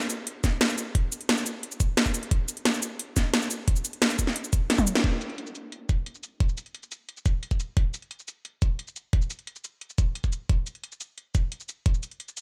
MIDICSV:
0, 0, Header, 1, 2, 480
1, 0, Start_track
1, 0, Tempo, 340909
1, 1338, Time_signature, 4, 2, 24, 8
1, 17480, End_track
2, 0, Start_track
2, 0, Title_t, "Drums"
2, 17, Note_on_c, 9, 82, 25
2, 137, Note_off_c, 9, 82, 0
2, 137, Note_on_c, 9, 42, 63
2, 137, Note_on_c, 9, 82, 58
2, 278, Note_off_c, 9, 42, 0
2, 278, Note_off_c, 9, 82, 0
2, 378, Note_on_c, 9, 42, 84
2, 519, Note_off_c, 9, 42, 0
2, 617, Note_on_c, 9, 36, 106
2, 617, Note_on_c, 9, 38, 36
2, 617, Note_on_c, 9, 42, 61
2, 617, Note_on_c, 9, 82, 55
2, 758, Note_off_c, 9, 36, 0
2, 758, Note_off_c, 9, 38, 0
2, 758, Note_off_c, 9, 42, 0
2, 758, Note_off_c, 9, 82, 0
2, 857, Note_on_c, 9, 38, 120
2, 857, Note_on_c, 9, 42, 85
2, 978, Note_on_c, 9, 82, 25
2, 998, Note_off_c, 9, 38, 0
2, 998, Note_off_c, 9, 42, 0
2, 1098, Note_off_c, 9, 82, 0
2, 1098, Note_on_c, 9, 42, 57
2, 1098, Note_on_c, 9, 82, 53
2, 1238, Note_off_c, 9, 42, 0
2, 1238, Note_off_c, 9, 82, 0
2, 1337, Note_on_c, 9, 36, 118
2, 1338, Note_on_c, 9, 42, 88
2, 1478, Note_off_c, 9, 36, 0
2, 1479, Note_off_c, 9, 42, 0
2, 1578, Note_on_c, 9, 42, 61
2, 1578, Note_on_c, 9, 82, 57
2, 1699, Note_off_c, 9, 42, 0
2, 1699, Note_on_c, 9, 42, 33
2, 1719, Note_off_c, 9, 82, 0
2, 1818, Note_off_c, 9, 42, 0
2, 1818, Note_on_c, 9, 38, 116
2, 1818, Note_on_c, 9, 42, 87
2, 1938, Note_off_c, 9, 42, 0
2, 1938, Note_on_c, 9, 42, 33
2, 1938, Note_on_c, 9, 82, 26
2, 1959, Note_off_c, 9, 38, 0
2, 2058, Note_off_c, 9, 42, 0
2, 2058, Note_off_c, 9, 82, 0
2, 2058, Note_on_c, 9, 42, 64
2, 2058, Note_on_c, 9, 82, 60
2, 2198, Note_off_c, 9, 42, 0
2, 2198, Note_off_c, 9, 82, 0
2, 2298, Note_on_c, 9, 42, 81
2, 2418, Note_on_c, 9, 82, 26
2, 2439, Note_off_c, 9, 42, 0
2, 2537, Note_on_c, 9, 36, 100
2, 2538, Note_off_c, 9, 82, 0
2, 2538, Note_on_c, 9, 42, 63
2, 2538, Note_on_c, 9, 82, 59
2, 2678, Note_off_c, 9, 36, 0
2, 2679, Note_off_c, 9, 42, 0
2, 2679, Note_off_c, 9, 82, 0
2, 2777, Note_on_c, 9, 38, 117
2, 2777, Note_on_c, 9, 42, 84
2, 2897, Note_on_c, 9, 36, 60
2, 2897, Note_on_c, 9, 82, 26
2, 2918, Note_off_c, 9, 38, 0
2, 2918, Note_off_c, 9, 42, 0
2, 3017, Note_off_c, 9, 82, 0
2, 3017, Note_on_c, 9, 42, 60
2, 3017, Note_on_c, 9, 82, 55
2, 3038, Note_off_c, 9, 36, 0
2, 3137, Note_off_c, 9, 42, 0
2, 3137, Note_on_c, 9, 42, 36
2, 3158, Note_off_c, 9, 82, 0
2, 3257, Note_off_c, 9, 42, 0
2, 3257, Note_on_c, 9, 36, 119
2, 3257, Note_on_c, 9, 42, 90
2, 3398, Note_off_c, 9, 36, 0
2, 3398, Note_off_c, 9, 42, 0
2, 3497, Note_on_c, 9, 42, 61
2, 3497, Note_on_c, 9, 82, 59
2, 3617, Note_off_c, 9, 42, 0
2, 3617, Note_on_c, 9, 42, 36
2, 3638, Note_off_c, 9, 82, 0
2, 3737, Note_off_c, 9, 42, 0
2, 3737, Note_on_c, 9, 38, 117
2, 3737, Note_on_c, 9, 42, 93
2, 3857, Note_on_c, 9, 82, 28
2, 3878, Note_off_c, 9, 38, 0
2, 3878, Note_off_c, 9, 42, 0
2, 3976, Note_off_c, 9, 82, 0
2, 3976, Note_on_c, 9, 42, 65
2, 3976, Note_on_c, 9, 82, 60
2, 4117, Note_off_c, 9, 42, 0
2, 4117, Note_off_c, 9, 82, 0
2, 4216, Note_on_c, 9, 42, 85
2, 4357, Note_off_c, 9, 42, 0
2, 4457, Note_on_c, 9, 36, 100
2, 4457, Note_on_c, 9, 38, 33
2, 4457, Note_on_c, 9, 42, 62
2, 4457, Note_on_c, 9, 82, 62
2, 4598, Note_off_c, 9, 36, 0
2, 4598, Note_off_c, 9, 38, 0
2, 4598, Note_off_c, 9, 42, 0
2, 4598, Note_off_c, 9, 82, 0
2, 4697, Note_on_c, 9, 38, 112
2, 4697, Note_on_c, 9, 42, 91
2, 4816, Note_on_c, 9, 82, 26
2, 4837, Note_off_c, 9, 38, 0
2, 4837, Note_off_c, 9, 42, 0
2, 4936, Note_off_c, 9, 82, 0
2, 4936, Note_on_c, 9, 42, 64
2, 4936, Note_on_c, 9, 82, 57
2, 5077, Note_off_c, 9, 42, 0
2, 5077, Note_off_c, 9, 82, 0
2, 5177, Note_on_c, 9, 36, 124
2, 5177, Note_on_c, 9, 42, 92
2, 5297, Note_on_c, 9, 82, 29
2, 5317, Note_off_c, 9, 42, 0
2, 5318, Note_off_c, 9, 36, 0
2, 5416, Note_off_c, 9, 82, 0
2, 5416, Note_on_c, 9, 42, 68
2, 5416, Note_on_c, 9, 82, 65
2, 5537, Note_off_c, 9, 42, 0
2, 5537, Note_on_c, 9, 42, 39
2, 5557, Note_off_c, 9, 82, 0
2, 5656, Note_off_c, 9, 42, 0
2, 5656, Note_on_c, 9, 38, 120
2, 5656, Note_on_c, 9, 42, 98
2, 5776, Note_off_c, 9, 42, 0
2, 5776, Note_on_c, 9, 42, 37
2, 5776, Note_on_c, 9, 82, 29
2, 5797, Note_off_c, 9, 38, 0
2, 5897, Note_off_c, 9, 42, 0
2, 5897, Note_off_c, 9, 82, 0
2, 5897, Note_on_c, 9, 36, 61
2, 5897, Note_on_c, 9, 42, 63
2, 5897, Note_on_c, 9, 82, 65
2, 6016, Note_on_c, 9, 38, 37
2, 6038, Note_off_c, 9, 36, 0
2, 6038, Note_off_c, 9, 42, 0
2, 6038, Note_off_c, 9, 82, 0
2, 6136, Note_on_c, 9, 42, 91
2, 6157, Note_off_c, 9, 38, 0
2, 6256, Note_on_c, 9, 82, 28
2, 6277, Note_off_c, 9, 42, 0
2, 6376, Note_off_c, 9, 82, 0
2, 6376, Note_on_c, 9, 42, 67
2, 6376, Note_on_c, 9, 82, 61
2, 6377, Note_on_c, 9, 36, 106
2, 6517, Note_off_c, 9, 42, 0
2, 6517, Note_off_c, 9, 82, 0
2, 6518, Note_off_c, 9, 36, 0
2, 6616, Note_on_c, 9, 38, 61
2, 6616, Note_on_c, 9, 42, 92
2, 6736, Note_on_c, 9, 48, 61
2, 6736, Note_on_c, 9, 82, 28
2, 6737, Note_on_c, 9, 36, 60
2, 6757, Note_off_c, 9, 38, 0
2, 6757, Note_off_c, 9, 42, 0
2, 6856, Note_off_c, 9, 82, 0
2, 6856, Note_on_c, 9, 42, 62
2, 6856, Note_on_c, 9, 82, 60
2, 6877, Note_off_c, 9, 48, 0
2, 6878, Note_off_c, 9, 36, 0
2, 6976, Note_off_c, 9, 42, 0
2, 6976, Note_on_c, 9, 38, 83
2, 6976, Note_on_c, 9, 42, 38
2, 6997, Note_off_c, 9, 82, 0
2, 7096, Note_off_c, 9, 42, 0
2, 7096, Note_on_c, 9, 42, 90
2, 7097, Note_on_c, 9, 36, 112
2, 7117, Note_off_c, 9, 38, 0
2, 7237, Note_off_c, 9, 42, 0
2, 7238, Note_off_c, 9, 36, 0
2, 7337, Note_on_c, 9, 42, 65
2, 7337, Note_on_c, 9, 82, 56
2, 7457, Note_off_c, 9, 42, 0
2, 7457, Note_on_c, 9, 42, 37
2, 7477, Note_off_c, 9, 82, 0
2, 7577, Note_off_c, 9, 42, 0
2, 7577, Note_on_c, 9, 42, 94
2, 7697, Note_on_c, 9, 82, 27
2, 7718, Note_off_c, 9, 42, 0
2, 7817, Note_off_c, 9, 82, 0
2, 7817, Note_on_c, 9, 42, 64
2, 7817, Note_on_c, 9, 82, 57
2, 7958, Note_off_c, 9, 42, 0
2, 7958, Note_off_c, 9, 82, 0
2, 8057, Note_on_c, 9, 42, 89
2, 8197, Note_off_c, 9, 42, 0
2, 8297, Note_on_c, 9, 36, 98
2, 8297, Note_on_c, 9, 42, 67
2, 8297, Note_on_c, 9, 82, 59
2, 8437, Note_off_c, 9, 42, 0
2, 8437, Note_off_c, 9, 82, 0
2, 8438, Note_off_c, 9, 36, 0
2, 8537, Note_on_c, 9, 42, 94
2, 8657, Note_on_c, 9, 82, 26
2, 8678, Note_off_c, 9, 42, 0
2, 8777, Note_off_c, 9, 82, 0
2, 8777, Note_on_c, 9, 42, 62
2, 8777, Note_on_c, 9, 82, 55
2, 8918, Note_off_c, 9, 42, 0
2, 8918, Note_off_c, 9, 82, 0
2, 9017, Note_on_c, 9, 36, 117
2, 9017, Note_on_c, 9, 42, 91
2, 9137, Note_on_c, 9, 82, 26
2, 9158, Note_off_c, 9, 36, 0
2, 9158, Note_off_c, 9, 42, 0
2, 9257, Note_off_c, 9, 82, 0
2, 9257, Note_on_c, 9, 42, 63
2, 9257, Note_on_c, 9, 82, 56
2, 9378, Note_off_c, 9, 42, 0
2, 9378, Note_on_c, 9, 42, 38
2, 9398, Note_off_c, 9, 82, 0
2, 9498, Note_off_c, 9, 42, 0
2, 9498, Note_on_c, 9, 42, 92
2, 9617, Note_off_c, 9, 42, 0
2, 9617, Note_on_c, 9, 42, 36
2, 9617, Note_on_c, 9, 82, 25
2, 9738, Note_off_c, 9, 42, 0
2, 9738, Note_off_c, 9, 82, 0
2, 9738, Note_on_c, 9, 42, 67
2, 9738, Note_on_c, 9, 82, 56
2, 9879, Note_off_c, 9, 42, 0
2, 9879, Note_off_c, 9, 82, 0
2, 9978, Note_on_c, 9, 42, 87
2, 10098, Note_on_c, 9, 82, 27
2, 10118, Note_off_c, 9, 42, 0
2, 10217, Note_on_c, 9, 36, 104
2, 10218, Note_off_c, 9, 82, 0
2, 10218, Note_on_c, 9, 42, 68
2, 10218, Note_on_c, 9, 82, 58
2, 10358, Note_off_c, 9, 36, 0
2, 10359, Note_off_c, 9, 42, 0
2, 10359, Note_off_c, 9, 82, 0
2, 10458, Note_on_c, 9, 42, 90
2, 10577, Note_on_c, 9, 36, 61
2, 10578, Note_on_c, 9, 82, 26
2, 10599, Note_off_c, 9, 42, 0
2, 10698, Note_off_c, 9, 82, 0
2, 10698, Note_on_c, 9, 42, 61
2, 10698, Note_on_c, 9, 82, 55
2, 10718, Note_off_c, 9, 36, 0
2, 10839, Note_off_c, 9, 42, 0
2, 10839, Note_off_c, 9, 82, 0
2, 10937, Note_on_c, 9, 36, 123
2, 10937, Note_on_c, 9, 42, 95
2, 11078, Note_off_c, 9, 36, 0
2, 11078, Note_off_c, 9, 42, 0
2, 11177, Note_on_c, 9, 42, 62
2, 11177, Note_on_c, 9, 82, 52
2, 11297, Note_off_c, 9, 42, 0
2, 11297, Note_on_c, 9, 42, 36
2, 11318, Note_off_c, 9, 82, 0
2, 11417, Note_off_c, 9, 42, 0
2, 11417, Note_on_c, 9, 42, 89
2, 11537, Note_on_c, 9, 82, 26
2, 11558, Note_off_c, 9, 42, 0
2, 11657, Note_off_c, 9, 82, 0
2, 11657, Note_on_c, 9, 42, 64
2, 11657, Note_on_c, 9, 82, 56
2, 11798, Note_off_c, 9, 42, 0
2, 11798, Note_off_c, 9, 82, 0
2, 11897, Note_on_c, 9, 42, 91
2, 12038, Note_off_c, 9, 42, 0
2, 12137, Note_on_c, 9, 36, 104
2, 12137, Note_on_c, 9, 42, 67
2, 12137, Note_on_c, 9, 82, 55
2, 12278, Note_off_c, 9, 36, 0
2, 12278, Note_off_c, 9, 42, 0
2, 12278, Note_off_c, 9, 82, 0
2, 12377, Note_on_c, 9, 42, 88
2, 12497, Note_on_c, 9, 82, 25
2, 12518, Note_off_c, 9, 42, 0
2, 12618, Note_off_c, 9, 82, 0
2, 12618, Note_on_c, 9, 42, 64
2, 12618, Note_on_c, 9, 82, 50
2, 12758, Note_off_c, 9, 42, 0
2, 12758, Note_off_c, 9, 82, 0
2, 12857, Note_on_c, 9, 36, 118
2, 12857, Note_on_c, 9, 42, 86
2, 12977, Note_on_c, 9, 82, 26
2, 12998, Note_off_c, 9, 36, 0
2, 12998, Note_off_c, 9, 42, 0
2, 13097, Note_off_c, 9, 82, 0
2, 13097, Note_on_c, 9, 42, 61
2, 13097, Note_on_c, 9, 82, 52
2, 13218, Note_off_c, 9, 42, 0
2, 13218, Note_on_c, 9, 42, 36
2, 13238, Note_off_c, 9, 82, 0
2, 13337, Note_off_c, 9, 42, 0
2, 13337, Note_on_c, 9, 42, 89
2, 13458, Note_off_c, 9, 42, 0
2, 13458, Note_on_c, 9, 42, 33
2, 13458, Note_on_c, 9, 82, 24
2, 13577, Note_off_c, 9, 42, 0
2, 13577, Note_off_c, 9, 82, 0
2, 13577, Note_on_c, 9, 42, 61
2, 13577, Note_on_c, 9, 82, 55
2, 13718, Note_off_c, 9, 42, 0
2, 13718, Note_off_c, 9, 82, 0
2, 13817, Note_on_c, 9, 42, 83
2, 13937, Note_on_c, 9, 82, 25
2, 13958, Note_off_c, 9, 42, 0
2, 14057, Note_off_c, 9, 82, 0
2, 14057, Note_on_c, 9, 36, 104
2, 14057, Note_on_c, 9, 42, 65
2, 14057, Note_on_c, 9, 82, 55
2, 14198, Note_off_c, 9, 36, 0
2, 14198, Note_off_c, 9, 42, 0
2, 14198, Note_off_c, 9, 82, 0
2, 14297, Note_on_c, 9, 42, 89
2, 14417, Note_on_c, 9, 36, 58
2, 14417, Note_on_c, 9, 82, 24
2, 14437, Note_off_c, 9, 42, 0
2, 14537, Note_off_c, 9, 82, 0
2, 14537, Note_on_c, 9, 42, 56
2, 14537, Note_on_c, 9, 82, 49
2, 14558, Note_off_c, 9, 36, 0
2, 14678, Note_off_c, 9, 42, 0
2, 14678, Note_off_c, 9, 82, 0
2, 14777, Note_on_c, 9, 36, 117
2, 14777, Note_on_c, 9, 42, 84
2, 14917, Note_off_c, 9, 42, 0
2, 14918, Note_off_c, 9, 36, 0
2, 15016, Note_on_c, 9, 42, 57
2, 15016, Note_on_c, 9, 82, 53
2, 15137, Note_off_c, 9, 42, 0
2, 15137, Note_on_c, 9, 42, 35
2, 15157, Note_off_c, 9, 82, 0
2, 15256, Note_off_c, 9, 42, 0
2, 15256, Note_on_c, 9, 42, 86
2, 15376, Note_on_c, 9, 82, 24
2, 15397, Note_off_c, 9, 42, 0
2, 15496, Note_off_c, 9, 82, 0
2, 15496, Note_on_c, 9, 42, 56
2, 15496, Note_on_c, 9, 82, 55
2, 15637, Note_off_c, 9, 42, 0
2, 15637, Note_off_c, 9, 82, 0
2, 15736, Note_on_c, 9, 42, 79
2, 15877, Note_off_c, 9, 42, 0
2, 15976, Note_on_c, 9, 42, 61
2, 15976, Note_on_c, 9, 82, 54
2, 15977, Note_on_c, 9, 36, 97
2, 16117, Note_off_c, 9, 42, 0
2, 16117, Note_off_c, 9, 82, 0
2, 16118, Note_off_c, 9, 36, 0
2, 16217, Note_on_c, 9, 42, 84
2, 16337, Note_on_c, 9, 82, 25
2, 16358, Note_off_c, 9, 42, 0
2, 16457, Note_off_c, 9, 82, 0
2, 16457, Note_on_c, 9, 42, 56
2, 16457, Note_on_c, 9, 82, 51
2, 16598, Note_off_c, 9, 42, 0
2, 16598, Note_off_c, 9, 82, 0
2, 16697, Note_on_c, 9, 36, 118
2, 16697, Note_on_c, 9, 42, 83
2, 16817, Note_on_c, 9, 82, 26
2, 16838, Note_off_c, 9, 36, 0
2, 16838, Note_off_c, 9, 42, 0
2, 16937, Note_off_c, 9, 82, 0
2, 16937, Note_on_c, 9, 42, 59
2, 16937, Note_on_c, 9, 82, 55
2, 17057, Note_off_c, 9, 42, 0
2, 17057, Note_on_c, 9, 42, 34
2, 17077, Note_off_c, 9, 82, 0
2, 17177, Note_off_c, 9, 42, 0
2, 17177, Note_on_c, 9, 42, 83
2, 17297, Note_off_c, 9, 42, 0
2, 17297, Note_on_c, 9, 42, 35
2, 17297, Note_on_c, 9, 82, 26
2, 17417, Note_off_c, 9, 42, 0
2, 17417, Note_off_c, 9, 82, 0
2, 17417, Note_on_c, 9, 42, 58
2, 17417, Note_on_c, 9, 82, 58
2, 17480, Note_off_c, 9, 42, 0
2, 17480, Note_off_c, 9, 82, 0
2, 17480, End_track
0, 0, End_of_file